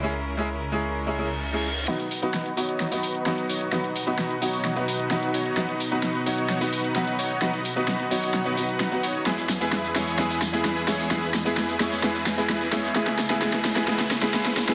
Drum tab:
HH |----------------|xxoxxxoxxooxxxox|xxoxxxooxxoxxxox|xxoxxxoxxooxxxox|
TB |----------------|----------------|----------------|----------------|
SD |----------------|o---o---o---o---|o---o---o---o---|o---o---o---o---|

HH |xxoxxxooxxoxxxox|xxoxxxoxxooxxxox|xxoxxxooxxoxxxox|xxoxxxoxxooxxxox|
TB |----------------|xxxxxxxxxxxxxxxx|xxxxxxxxxxxxxxxx|xxxxxxxxxxxxxxxx|
SD |o---o---o---o---|o-o-o-o-o-o-o-o-|o-o-o-o-o-o-o-o-|oooooooooooooooo|